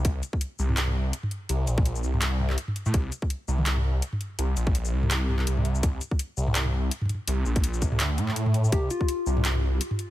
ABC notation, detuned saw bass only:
X:1
M:4/4
L:1/16
Q:"Swing 16ths" 1/4=166
K:Bb
V:1 name="Detuned saw bass" clef=bass
C,,2 z4 C,,6 z4 | C,,2 B,,,4 C,,6 z3 A,, | C,,2 z4 C,,6 z4 | C,,2 B,,,4 C,,4 C,,2 C,,4 |
C,,2 z4 C,,6 z4 | C,,2 B,,,4 C,,2 D,,2 A,,6 | C,,2 z4 C,,6 z4 |]